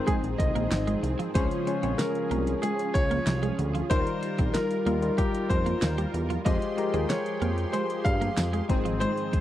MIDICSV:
0, 0, Header, 1, 9, 480
1, 0, Start_track
1, 0, Key_signature, -4, "major"
1, 0, Tempo, 638298
1, 1017, Time_signature, 4, 2, 24, 8
1, 7073, End_track
2, 0, Start_track
2, 0, Title_t, "Grand piano"
2, 0, Program_c, 0, 0
2, 50, Note_on_c, 0, 68, 92
2, 105, Note_off_c, 0, 68, 0
2, 289, Note_on_c, 0, 75, 95
2, 743, Note_off_c, 0, 75, 0
2, 1011, Note_on_c, 0, 72, 88
2, 1464, Note_off_c, 0, 72, 0
2, 1490, Note_on_c, 0, 70, 91
2, 1944, Note_off_c, 0, 70, 0
2, 1970, Note_on_c, 0, 68, 93
2, 2197, Note_off_c, 0, 68, 0
2, 2211, Note_on_c, 0, 73, 114
2, 2664, Note_off_c, 0, 73, 0
2, 2931, Note_on_c, 0, 72, 109
2, 3412, Note_on_c, 0, 70, 98
2, 3429, Note_off_c, 0, 72, 0
2, 3893, Note_on_c, 0, 67, 89
2, 3909, Note_off_c, 0, 70, 0
2, 4132, Note_on_c, 0, 72, 102
2, 4143, Note_off_c, 0, 67, 0
2, 4585, Note_off_c, 0, 72, 0
2, 4851, Note_on_c, 0, 75, 95
2, 5331, Note_on_c, 0, 73, 88
2, 5349, Note_off_c, 0, 75, 0
2, 5810, Note_on_c, 0, 72, 94
2, 5829, Note_off_c, 0, 73, 0
2, 6037, Note_off_c, 0, 72, 0
2, 6050, Note_on_c, 0, 77, 120
2, 6504, Note_off_c, 0, 77, 0
2, 6770, Note_on_c, 0, 72, 107
2, 7073, Note_off_c, 0, 72, 0
2, 7073, End_track
3, 0, Start_track
3, 0, Title_t, "Analog polysynth"
3, 0, Program_c, 1, 90
3, 0, Note_on_c, 1, 51, 79
3, 0, Note_on_c, 1, 60, 83
3, 0, Note_on_c, 1, 68, 85
3, 988, Note_off_c, 1, 51, 0
3, 988, Note_off_c, 1, 60, 0
3, 988, Note_off_c, 1, 68, 0
3, 1018, Note_on_c, 1, 53, 76
3, 1018, Note_on_c, 1, 61, 76
3, 1018, Note_on_c, 1, 68, 85
3, 2908, Note_off_c, 1, 53, 0
3, 2908, Note_off_c, 1, 61, 0
3, 2908, Note_off_c, 1, 68, 0
3, 2938, Note_on_c, 1, 55, 76
3, 2938, Note_on_c, 1, 70, 85
3, 2939, Note_on_c, 1, 65, 76
3, 4828, Note_off_c, 1, 55, 0
3, 4828, Note_off_c, 1, 65, 0
3, 4828, Note_off_c, 1, 70, 0
3, 4858, Note_on_c, 1, 68, 77
3, 4859, Note_on_c, 1, 67, 79
3, 4859, Note_on_c, 1, 84, 88
3, 6508, Note_off_c, 1, 67, 0
3, 6508, Note_off_c, 1, 68, 0
3, 6508, Note_off_c, 1, 84, 0
3, 6537, Note_on_c, 1, 51, 81
3, 6538, Note_on_c, 1, 60, 80
3, 6538, Note_on_c, 1, 68, 93
3, 7073, Note_off_c, 1, 51, 0
3, 7073, Note_off_c, 1, 60, 0
3, 7073, Note_off_c, 1, 68, 0
3, 7073, End_track
4, 0, Start_track
4, 0, Title_t, "Synth keys"
4, 0, Program_c, 2, 88
4, 0, Control_c, 2, 64, 127
4, 0, Note_on_c, 2, 44, 67
4, 0, Note_on_c, 2, 56, 71
4, 0, Note_on_c, 2, 60, 65
4, 0, Note_on_c, 2, 63, 69
4, 0, Note_on_c, 2, 72, 79
4, 667, Note_off_c, 2, 56, 0
4, 669, Note_off_c, 2, 60, 0
4, 670, Note_off_c, 2, 63, 0
4, 672, Note_off_c, 2, 72, 0
4, 1012, Note_on_c, 2, 56, 70
4, 1016, Note_on_c, 2, 61, 65
4, 1017, Note_on_c, 2, 49, 62
4, 1018, Note_on_c, 2, 65, 62
4, 1021, Note_on_c, 2, 73, 76
4, 1026, Control_c, 2, 64, 0
4, 1029, Note_off_c, 2, 44, 0
4, 1179, Control_c, 2, 64, 127
4, 1198, Note_off_c, 2, 56, 0
4, 1200, Note_off_c, 2, 61, 0
4, 1201, Note_off_c, 2, 65, 0
4, 1203, Note_off_c, 2, 73, 0
4, 1253, Note_on_c, 2, 56, 74
4, 1255, Note_on_c, 2, 61, 72
4, 1258, Note_on_c, 2, 65, 68
4, 1262, Note_on_c, 2, 73, 83
4, 1347, Note_off_c, 2, 56, 0
4, 1348, Note_off_c, 2, 61, 0
4, 1350, Note_off_c, 2, 65, 0
4, 1351, Note_off_c, 2, 73, 0
4, 1372, Note_on_c, 2, 56, 73
4, 1375, Note_on_c, 2, 61, 70
4, 1378, Note_on_c, 2, 65, 68
4, 1382, Note_on_c, 2, 73, 77
4, 1707, Note_off_c, 2, 49, 0
4, 2107, Note_off_c, 2, 56, 0
4, 2109, Note_off_c, 2, 61, 0
4, 2110, Note_off_c, 2, 65, 0
4, 2112, Note_off_c, 2, 73, 0
4, 2933, Note_on_c, 2, 55, 75
4, 2935, Note_on_c, 2, 63, 68
4, 2937, Note_on_c, 2, 51, 63
4, 2938, Note_on_c, 2, 65, 65
4, 2941, Note_on_c, 2, 70, 74
4, 2948, Control_c, 2, 64, 0
4, 3078, Control_c, 2, 64, 127
4, 3485, Note_off_c, 2, 55, 0
4, 3486, Note_off_c, 2, 63, 0
4, 3487, Note_off_c, 2, 65, 0
4, 3489, Note_off_c, 2, 70, 0
4, 3627, Note_off_c, 2, 51, 0
4, 3654, Note_on_c, 2, 55, 76
4, 3657, Note_on_c, 2, 63, 69
4, 3660, Note_on_c, 2, 65, 72
4, 3663, Note_on_c, 2, 70, 81
4, 3747, Note_off_c, 2, 55, 0
4, 3749, Note_off_c, 2, 63, 0
4, 3750, Note_off_c, 2, 65, 0
4, 3752, Note_off_c, 2, 70, 0
4, 3773, Note_on_c, 2, 55, 77
4, 3777, Note_on_c, 2, 63, 66
4, 3778, Note_on_c, 2, 65, 70
4, 3782, Note_on_c, 2, 70, 79
4, 4508, Note_off_c, 2, 55, 0
4, 4510, Note_off_c, 2, 63, 0
4, 4510, Note_off_c, 2, 65, 0
4, 4512, Note_off_c, 2, 70, 0
4, 4853, Note_on_c, 2, 56, 77
4, 4856, Note_on_c, 2, 65, 68
4, 4859, Note_on_c, 2, 67, 66
4, 4862, Note_on_c, 2, 72, 77
4, 4867, Control_c, 2, 64, 0
4, 4985, Control_c, 2, 64, 127
4, 5038, Note_off_c, 2, 56, 0
4, 5040, Note_off_c, 2, 65, 0
4, 5041, Note_off_c, 2, 67, 0
4, 5043, Note_off_c, 2, 72, 0
4, 5091, Note_on_c, 2, 56, 81
4, 5093, Note_on_c, 2, 65, 70
4, 5098, Note_on_c, 2, 67, 73
4, 5100, Note_on_c, 2, 70, 83
4, 5186, Note_off_c, 2, 56, 0
4, 5187, Note_off_c, 2, 65, 0
4, 5189, Note_off_c, 2, 67, 0
4, 5190, Note_off_c, 2, 70, 0
4, 5211, Note_on_c, 2, 56, 75
4, 5213, Note_on_c, 2, 65, 70
4, 5217, Note_on_c, 2, 67, 67
4, 5220, Note_on_c, 2, 68, 81
4, 5947, Note_off_c, 2, 56, 0
4, 5948, Note_off_c, 2, 65, 0
4, 5950, Note_off_c, 2, 67, 0
4, 5951, Note_off_c, 2, 68, 0
4, 6532, Note_on_c, 2, 56, 82
4, 6535, Note_on_c, 2, 60, 76
4, 6537, Note_on_c, 2, 44, 67
4, 6538, Note_on_c, 2, 63, 75
4, 6542, Note_on_c, 2, 72, 86
4, 6548, Control_c, 2, 64, 0
4, 6667, Control_c, 2, 64, 127
4, 7073, Note_off_c, 2, 44, 0
4, 7073, Note_off_c, 2, 56, 0
4, 7073, Note_off_c, 2, 60, 0
4, 7073, Note_off_c, 2, 63, 0
4, 7073, Note_off_c, 2, 72, 0
4, 7073, End_track
5, 0, Start_track
5, 0, Title_t, "Analog synth pad"
5, 0, Program_c, 3, 89
5, 0, Note_on_c, 3, 53, 80
5, 0, Note_on_c, 3, 60, 67
5, 0, Note_on_c, 3, 63, 89
5, 997, Note_off_c, 3, 60, 0
5, 997, Note_off_c, 3, 63, 0
5, 1019, Note_on_c, 3, 61, 77
5, 1020, Note_on_c, 3, 65, 87
5, 2906, Note_off_c, 3, 53, 0
5, 2919, Note_off_c, 3, 61, 0
5, 2939, Note_on_c, 3, 55, 80
5, 2939, Note_on_c, 3, 63, 77
5, 4839, Note_off_c, 3, 55, 0
5, 4839, Note_off_c, 3, 63, 0
5, 4856, Note_on_c, 3, 53, 78
5, 4856, Note_on_c, 3, 79, 85
5, 6509, Note_off_c, 3, 65, 0
5, 6520, Note_off_c, 3, 79, 0
5, 6538, Note_on_c, 3, 63, 87
5, 6539, Note_on_c, 3, 60, 72
5, 7073, Note_off_c, 3, 53, 0
5, 7073, Note_off_c, 3, 60, 0
5, 7073, Note_off_c, 3, 63, 0
5, 7073, End_track
6, 0, Start_track
6, 0, Title_t, "Clean electric guitar"
6, 0, Program_c, 4, 27
6, 57, Note_on_c, 4, 56, 82
6, 124, Note_off_c, 4, 56, 0
6, 417, Note_on_c, 4, 58, 71
6, 484, Note_off_c, 4, 58, 0
6, 657, Note_on_c, 4, 56, 68
6, 724, Note_off_c, 4, 56, 0
6, 896, Note_on_c, 4, 53, 72
6, 964, Note_off_c, 4, 53, 0
6, 1018, Note_on_c, 4, 61, 88
6, 1085, Note_off_c, 4, 61, 0
6, 1379, Note_on_c, 4, 60, 63
6, 1445, Note_off_c, 4, 60, 0
6, 1738, Note_on_c, 4, 58, 70
6, 1805, Note_off_c, 4, 58, 0
6, 1978, Note_on_c, 4, 56, 84
6, 2045, Note_off_c, 4, 56, 0
6, 2338, Note_on_c, 4, 58, 69
6, 2405, Note_off_c, 4, 58, 0
6, 2578, Note_on_c, 4, 56, 69
6, 2645, Note_off_c, 4, 56, 0
6, 2818, Note_on_c, 4, 53, 70
6, 2884, Note_off_c, 4, 53, 0
6, 2939, Note_on_c, 4, 63, 92
6, 3005, Note_off_c, 4, 63, 0
6, 3298, Note_on_c, 4, 60, 63
6, 3365, Note_off_c, 4, 60, 0
6, 3659, Note_on_c, 4, 58, 73
6, 3725, Note_off_c, 4, 58, 0
6, 3898, Note_on_c, 4, 55, 81
6, 3965, Note_off_c, 4, 55, 0
6, 4258, Note_on_c, 4, 58, 71
6, 4324, Note_off_c, 4, 58, 0
6, 4498, Note_on_c, 4, 55, 72
6, 4565, Note_off_c, 4, 55, 0
6, 4738, Note_on_c, 4, 53, 75
6, 4805, Note_off_c, 4, 53, 0
6, 4856, Note_on_c, 4, 53, 91
6, 4923, Note_off_c, 4, 53, 0
6, 5217, Note_on_c, 4, 60, 66
6, 5284, Note_off_c, 4, 60, 0
6, 5578, Note_on_c, 4, 58, 68
6, 5644, Note_off_c, 4, 58, 0
6, 5816, Note_on_c, 4, 56, 83
6, 5883, Note_off_c, 4, 56, 0
6, 6177, Note_on_c, 4, 58, 70
6, 6244, Note_off_c, 4, 58, 0
6, 6417, Note_on_c, 4, 56, 70
6, 6484, Note_off_c, 4, 56, 0
6, 6657, Note_on_c, 4, 53, 75
6, 6724, Note_off_c, 4, 53, 0
6, 6776, Note_on_c, 4, 56, 98
6, 6844, Note_off_c, 4, 56, 0
6, 7073, End_track
7, 0, Start_track
7, 0, Title_t, "Analog synth bass"
7, 0, Program_c, 5, 38
7, 177, Note_on_c, 5, 34, 82
7, 267, Note_off_c, 5, 34, 0
7, 297, Note_on_c, 5, 36, 86
7, 387, Note_off_c, 5, 36, 0
7, 417, Note_on_c, 5, 34, 76
7, 508, Note_off_c, 5, 34, 0
7, 536, Note_on_c, 5, 32, 99
7, 717, Note_off_c, 5, 32, 0
7, 776, Note_on_c, 5, 36, 88
7, 866, Note_off_c, 5, 36, 0
7, 1018, Note_on_c, 5, 37, 112
7, 1108, Note_off_c, 5, 37, 0
7, 1377, Note_on_c, 5, 34, 94
7, 1467, Note_off_c, 5, 34, 0
7, 1736, Note_on_c, 5, 36, 85
7, 1916, Note_off_c, 5, 36, 0
7, 2217, Note_on_c, 5, 37, 88
7, 2397, Note_off_c, 5, 37, 0
7, 2457, Note_on_c, 5, 36, 94
7, 2637, Note_off_c, 5, 36, 0
7, 2697, Note_on_c, 5, 38, 89
7, 2877, Note_off_c, 5, 38, 0
7, 2938, Note_on_c, 5, 39, 104
7, 3028, Note_off_c, 5, 39, 0
7, 3300, Note_on_c, 5, 34, 85
7, 3389, Note_off_c, 5, 34, 0
7, 3656, Note_on_c, 5, 39, 89
7, 3837, Note_off_c, 5, 39, 0
7, 4137, Note_on_c, 5, 41, 88
7, 4317, Note_off_c, 5, 41, 0
7, 4377, Note_on_c, 5, 39, 88
7, 4557, Note_off_c, 5, 39, 0
7, 4617, Note_on_c, 5, 40, 83
7, 4797, Note_off_c, 5, 40, 0
7, 4858, Note_on_c, 5, 41, 107
7, 4948, Note_off_c, 5, 41, 0
7, 5217, Note_on_c, 5, 39, 84
7, 5307, Note_off_c, 5, 39, 0
7, 5576, Note_on_c, 5, 41, 86
7, 5757, Note_off_c, 5, 41, 0
7, 6057, Note_on_c, 5, 43, 94
7, 6237, Note_off_c, 5, 43, 0
7, 6296, Note_on_c, 5, 41, 90
7, 6477, Note_off_c, 5, 41, 0
7, 6538, Note_on_c, 5, 32, 96
7, 6808, Note_off_c, 5, 32, 0
7, 7073, End_track
8, 0, Start_track
8, 0, Title_t, "Muted clean electric guitar strokes"
8, 297, Note_on_c, 9, 29, 46
8, 372, Note_off_c, 9, 29, 0
8, 777, Note_on_c, 9, 29, 41
8, 852, Note_off_c, 9, 29, 0
8, 1257, Note_on_c, 9, 29, 44
8, 1332, Note_off_c, 9, 29, 0
8, 2218, Note_on_c, 9, 29, 47
8, 2293, Note_off_c, 9, 29, 0
8, 2698, Note_on_c, 9, 29, 43
8, 2773, Note_off_c, 9, 29, 0
8, 3179, Note_on_c, 9, 29, 45
8, 3254, Note_off_c, 9, 29, 0
8, 4139, Note_on_c, 9, 29, 46
8, 4214, Note_off_c, 9, 29, 0
8, 4618, Note_on_c, 9, 29, 42
8, 4693, Note_off_c, 9, 29, 0
8, 5097, Note_on_c, 9, 29, 44
8, 5172, Note_off_c, 9, 29, 0
8, 6057, Note_on_c, 9, 29, 47
8, 6132, Note_off_c, 9, 29, 0
8, 6537, Note_on_c, 9, 29, 41
8, 6612, Note_off_c, 9, 29, 0
8, 7017, Note_on_c, 9, 29, 44
8, 7073, Note_off_c, 9, 29, 0
8, 7073, End_track
9, 0, Start_track
9, 0, Title_t, "Drums"
9, 56, Note_on_c, 9, 42, 85
9, 57, Note_on_c, 9, 36, 92
9, 132, Note_off_c, 9, 36, 0
9, 132, Note_off_c, 9, 42, 0
9, 180, Note_on_c, 9, 42, 57
9, 255, Note_off_c, 9, 42, 0
9, 297, Note_on_c, 9, 36, 95
9, 300, Note_on_c, 9, 42, 74
9, 372, Note_off_c, 9, 36, 0
9, 375, Note_off_c, 9, 42, 0
9, 420, Note_on_c, 9, 42, 52
9, 495, Note_off_c, 9, 42, 0
9, 537, Note_on_c, 9, 54, 76
9, 538, Note_on_c, 9, 38, 116
9, 539, Note_on_c, 9, 42, 93
9, 612, Note_off_c, 9, 54, 0
9, 613, Note_off_c, 9, 38, 0
9, 614, Note_off_c, 9, 42, 0
9, 658, Note_on_c, 9, 42, 56
9, 733, Note_off_c, 9, 42, 0
9, 779, Note_on_c, 9, 42, 75
9, 854, Note_off_c, 9, 42, 0
9, 900, Note_on_c, 9, 42, 60
9, 975, Note_off_c, 9, 42, 0
9, 1017, Note_on_c, 9, 42, 103
9, 1018, Note_on_c, 9, 36, 117
9, 1092, Note_off_c, 9, 42, 0
9, 1093, Note_off_c, 9, 36, 0
9, 1138, Note_on_c, 9, 42, 53
9, 1213, Note_off_c, 9, 42, 0
9, 1258, Note_on_c, 9, 42, 78
9, 1333, Note_off_c, 9, 42, 0
9, 1376, Note_on_c, 9, 42, 52
9, 1452, Note_off_c, 9, 42, 0
9, 1497, Note_on_c, 9, 42, 91
9, 1497, Note_on_c, 9, 54, 59
9, 1498, Note_on_c, 9, 38, 94
9, 1572, Note_off_c, 9, 42, 0
9, 1573, Note_off_c, 9, 38, 0
9, 1573, Note_off_c, 9, 54, 0
9, 1619, Note_on_c, 9, 42, 49
9, 1694, Note_off_c, 9, 42, 0
9, 1738, Note_on_c, 9, 42, 78
9, 1813, Note_off_c, 9, 42, 0
9, 1858, Note_on_c, 9, 42, 54
9, 1934, Note_off_c, 9, 42, 0
9, 1977, Note_on_c, 9, 42, 79
9, 2052, Note_off_c, 9, 42, 0
9, 2100, Note_on_c, 9, 42, 55
9, 2175, Note_off_c, 9, 42, 0
9, 2217, Note_on_c, 9, 36, 98
9, 2220, Note_on_c, 9, 42, 67
9, 2293, Note_off_c, 9, 36, 0
9, 2295, Note_off_c, 9, 42, 0
9, 2339, Note_on_c, 9, 42, 53
9, 2414, Note_off_c, 9, 42, 0
9, 2456, Note_on_c, 9, 54, 76
9, 2457, Note_on_c, 9, 38, 111
9, 2458, Note_on_c, 9, 42, 97
9, 2531, Note_off_c, 9, 54, 0
9, 2533, Note_off_c, 9, 38, 0
9, 2533, Note_off_c, 9, 42, 0
9, 2579, Note_on_c, 9, 42, 53
9, 2654, Note_off_c, 9, 42, 0
9, 2699, Note_on_c, 9, 42, 74
9, 2774, Note_off_c, 9, 42, 0
9, 2820, Note_on_c, 9, 42, 58
9, 2895, Note_off_c, 9, 42, 0
9, 2938, Note_on_c, 9, 36, 115
9, 2938, Note_on_c, 9, 42, 101
9, 3013, Note_off_c, 9, 36, 0
9, 3013, Note_off_c, 9, 42, 0
9, 3059, Note_on_c, 9, 42, 52
9, 3134, Note_off_c, 9, 42, 0
9, 3179, Note_on_c, 9, 42, 79
9, 3254, Note_off_c, 9, 42, 0
9, 3297, Note_on_c, 9, 42, 51
9, 3300, Note_on_c, 9, 36, 93
9, 3372, Note_off_c, 9, 42, 0
9, 3376, Note_off_c, 9, 36, 0
9, 3417, Note_on_c, 9, 42, 94
9, 3418, Note_on_c, 9, 38, 98
9, 3418, Note_on_c, 9, 54, 57
9, 3492, Note_off_c, 9, 42, 0
9, 3493, Note_off_c, 9, 38, 0
9, 3493, Note_off_c, 9, 54, 0
9, 3539, Note_on_c, 9, 42, 51
9, 3614, Note_off_c, 9, 42, 0
9, 3659, Note_on_c, 9, 42, 72
9, 3734, Note_off_c, 9, 42, 0
9, 3778, Note_on_c, 9, 42, 52
9, 3854, Note_off_c, 9, 42, 0
9, 3897, Note_on_c, 9, 36, 93
9, 3897, Note_on_c, 9, 42, 82
9, 3972, Note_off_c, 9, 42, 0
9, 3973, Note_off_c, 9, 36, 0
9, 4020, Note_on_c, 9, 42, 55
9, 4095, Note_off_c, 9, 42, 0
9, 4137, Note_on_c, 9, 36, 93
9, 4140, Note_on_c, 9, 42, 70
9, 4212, Note_off_c, 9, 36, 0
9, 4215, Note_off_c, 9, 42, 0
9, 4259, Note_on_c, 9, 42, 57
9, 4334, Note_off_c, 9, 42, 0
9, 4376, Note_on_c, 9, 54, 79
9, 4378, Note_on_c, 9, 38, 111
9, 4379, Note_on_c, 9, 42, 96
9, 4451, Note_off_c, 9, 54, 0
9, 4453, Note_off_c, 9, 38, 0
9, 4454, Note_off_c, 9, 42, 0
9, 4499, Note_on_c, 9, 42, 56
9, 4574, Note_off_c, 9, 42, 0
9, 4620, Note_on_c, 9, 42, 73
9, 4695, Note_off_c, 9, 42, 0
9, 4740, Note_on_c, 9, 42, 59
9, 4815, Note_off_c, 9, 42, 0
9, 4858, Note_on_c, 9, 36, 120
9, 4858, Note_on_c, 9, 42, 98
9, 4933, Note_off_c, 9, 36, 0
9, 4933, Note_off_c, 9, 42, 0
9, 4979, Note_on_c, 9, 42, 53
9, 5054, Note_off_c, 9, 42, 0
9, 5099, Note_on_c, 9, 42, 81
9, 5174, Note_off_c, 9, 42, 0
9, 5217, Note_on_c, 9, 42, 54
9, 5292, Note_off_c, 9, 42, 0
9, 5338, Note_on_c, 9, 42, 97
9, 5338, Note_on_c, 9, 54, 58
9, 5339, Note_on_c, 9, 38, 102
9, 5413, Note_off_c, 9, 42, 0
9, 5413, Note_off_c, 9, 54, 0
9, 5414, Note_off_c, 9, 38, 0
9, 5459, Note_on_c, 9, 42, 50
9, 5534, Note_off_c, 9, 42, 0
9, 5578, Note_on_c, 9, 42, 78
9, 5653, Note_off_c, 9, 42, 0
9, 5698, Note_on_c, 9, 42, 52
9, 5774, Note_off_c, 9, 42, 0
9, 5816, Note_on_c, 9, 42, 84
9, 5892, Note_off_c, 9, 42, 0
9, 5940, Note_on_c, 9, 42, 59
9, 6015, Note_off_c, 9, 42, 0
9, 6056, Note_on_c, 9, 36, 93
9, 6059, Note_on_c, 9, 42, 67
9, 6132, Note_off_c, 9, 36, 0
9, 6134, Note_off_c, 9, 42, 0
9, 6179, Note_on_c, 9, 42, 52
9, 6254, Note_off_c, 9, 42, 0
9, 6297, Note_on_c, 9, 54, 76
9, 6298, Note_on_c, 9, 38, 113
9, 6299, Note_on_c, 9, 42, 93
9, 6372, Note_off_c, 9, 54, 0
9, 6373, Note_off_c, 9, 38, 0
9, 6374, Note_off_c, 9, 42, 0
9, 6419, Note_on_c, 9, 42, 51
9, 6494, Note_off_c, 9, 42, 0
9, 6538, Note_on_c, 9, 36, 104
9, 6539, Note_on_c, 9, 42, 74
9, 6613, Note_off_c, 9, 36, 0
9, 6614, Note_off_c, 9, 42, 0
9, 6660, Note_on_c, 9, 42, 59
9, 6735, Note_off_c, 9, 42, 0
9, 6778, Note_on_c, 9, 42, 108
9, 6853, Note_off_c, 9, 42, 0
9, 6899, Note_on_c, 9, 42, 54
9, 6975, Note_off_c, 9, 42, 0
9, 7018, Note_on_c, 9, 42, 75
9, 7019, Note_on_c, 9, 36, 95
9, 7073, Note_off_c, 9, 36, 0
9, 7073, Note_off_c, 9, 42, 0
9, 7073, End_track
0, 0, End_of_file